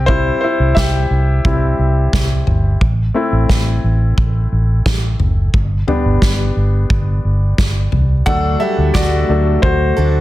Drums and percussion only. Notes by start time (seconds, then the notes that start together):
0.08 kick
0.77 kick, snare
1.45 kick
2.13 kick, snare
2.47 floor tom
2.81 kick
3.49 kick, snare
4.18 kick
4.86 kick, snare
5.20 floor tom
5.54 kick
5.88 floor tom
6.22 kick, snare
6.90 kick
7.58 kick, snare
7.92 floor tom
8.27 kick
8.95 kick, snare
9.63 kick